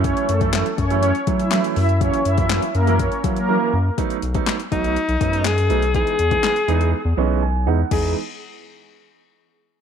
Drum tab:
CC |----------------|----------------|----------------|----------------|
HH |xxxxxxxxxxxxxxox|xxxxxxxxxxxx----|xxxxxxxxxxxxxxxx|xxxxxxxx--------|
CP |----x-------x---|----x-----------|----x-------x---|----x-----------|
SD |----o-------o---|----o-----------|----o-------o---|----o-----------|
BD |o--o--o---o-----|o--o----o-o-----|o--o--o---o-----|o--o------------|

CC |x---------------|
HH |----------------|
CP |----------------|
SD |----------------|
BD |o---------------|